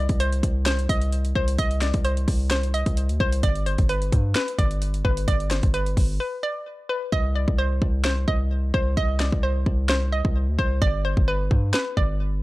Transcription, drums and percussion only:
0.09 kick medium
0.09 closed hi-hat medium
0.20 closed hi-hat medium
0.32 closed hi-hat medium
0.43 kick loud
0.43 closed hi-hat medium
0.65 finger snap medium
0.65 snare loud
0.65 closed hi-hat medium
0.79 closed hi-hat medium
0.89 kick loud
0.89 closed hi-hat medium
1.02 closed hi-hat medium
1.12 closed hi-hat medium
1.25 closed hi-hat medium
1.35 kick medium
1.48 closed hi-hat medium
1.58 kick loud
1.58 closed hi-hat loud
1.71 closed hi-hat medium
1.81 finger snap medium
1.81 snare medium
1.81 closed hi-hat medium
1.94 kick loud
1.94 closed hi-hat medium
2.05 closed hi-hat medium
2.17 closed hi-hat medium
2.28 kick loud
2.28 open hi-hat medium
2.50 finger snap medium
2.50 snare loud
2.50 closed hi-hat medium
2.63 closed hi-hat medium
2.74 closed hi-hat medium
2.86 kick loud
2.86 closed hi-hat medium
2.97 closed hi-hat medium
3.09 closed hi-hat medium
3.20 kick loud
3.32 closed hi-hat medium
3.43 kick loud
3.43 closed hi-hat loud
3.55 closed hi-hat medium
3.66 closed hi-hat medium
3.78 kick loud
3.78 closed hi-hat medium
3.89 closed hi-hat medium
4.02 closed hi-hat medium
4.12 kick loud
4.12 closed hi-hat medium
4.35 finger snap medium
4.35 snare loud
4.35 closed hi-hat medium
4.48 closed hi-hat medium
4.59 kick loud
4.59 closed hi-hat medium
4.71 closed hi-hat medium
4.82 closed hi-hat medium
4.94 closed hi-hat medium
5.05 kick medium
5.17 closed hi-hat medium
5.28 kick loud
5.28 closed hi-hat loud
5.40 closed hi-hat medium
5.50 finger snap medium
5.50 snare medium
5.50 closed hi-hat medium
5.63 kick loud
5.63 closed hi-hat medium
5.74 closed hi-hat medium
5.86 closed hi-hat medium
5.97 kick loud
5.97 open hi-hat medium
7.12 kick loud
7.48 kick medium
7.82 kick medium
8.04 finger snap medium
8.04 snare loud
8.28 kick medium
8.74 kick medium
8.97 kick loud
9.19 finger snap medium
9.19 snare medium
9.32 kick medium
9.66 kick medium
9.89 finger snap medium
9.89 snare loud
10.25 kick medium
10.59 kick medium
10.82 kick loud
11.17 kick loud
11.51 kick loud
11.73 finger snap medium
11.73 snare loud
11.97 kick loud

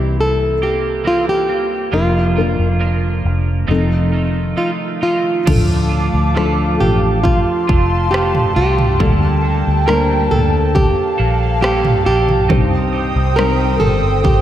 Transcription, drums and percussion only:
5.47 kick medium
5.47 floor tom medium
5.47 crash medium
6.37 cross-stick medium
6.81 floor tom soft
7.25 kick medium
7.25 floor tom medium
7.69 kick medium
8.14 cross-stick medium
8.35 floor tom medium
8.79 floor tom medium
9.00 kick medium
9.00 floor tom medium
9.89 cross-stick medium
10.31 floor tom soft
10.76 kick medium
10.76 floor tom medium
11.64 cross-stick medium
11.85 floor tom medium
12.29 floor tom medium
12.50 kick medium
12.50 floor tom loud
13.39 cross-stick medium
13.81 floor tom medium
14.25 kick medium
14.25 floor tom medium

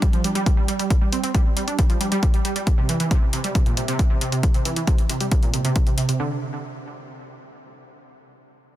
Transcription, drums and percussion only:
0.02 kick loud
0.02 closed hi-hat medium
0.13 closed hi-hat soft
0.24 closed hi-hat medium
0.35 closed hi-hat soft
0.46 kick loud
0.46 closed hi-hat medium
0.68 closed hi-hat medium
0.79 closed hi-hat soft
0.90 kick loud
0.90 closed hi-hat medium
1.12 closed hi-hat medium
1.24 closed hi-hat medium
1.35 kick loud
1.35 closed hi-hat medium
1.57 closed hi-hat medium
1.68 closed hi-hat soft
1.79 kick loud
1.79 closed hi-hat medium
1.90 closed hi-hat soft
2.01 closed hi-hat medium
2.12 closed hi-hat medium
2.23 kick loud
2.23 closed hi-hat medium
2.34 closed hi-hat soft
2.45 closed hi-hat medium
2.56 closed hi-hat medium
2.67 kick loud
2.67 closed hi-hat medium
2.89 closed hi-hat medium
3.00 closed hi-hat medium
3.11 kick loud
3.11 closed hi-hat medium
3.33 closed hi-hat medium
3.44 closed hi-hat medium
3.55 kick loud
3.55 closed hi-hat medium
3.66 closed hi-hat soft
3.77 closed hi-hat medium
3.88 closed hi-hat medium
3.99 kick loud
3.99 closed hi-hat medium
4.21 closed hi-hat medium
4.32 closed hi-hat medium
4.43 kick loud
4.43 closed hi-hat medium
4.54 closed hi-hat soft
4.65 closed hi-hat medium
4.76 closed hi-hat medium
4.87 kick loud
4.87 closed hi-hat medium
4.98 closed hi-hat soft
5.09 closed hi-hat medium
5.20 closed hi-hat medium
5.32 kick loud
5.32 closed hi-hat medium
5.43 closed hi-hat soft
5.54 closed hi-hat medium
5.65 closed hi-hat medium
5.76 kick loud
5.76 closed hi-hat medium
5.87 closed hi-hat soft
5.98 closed hi-hat medium
6.09 closed hi-hat medium

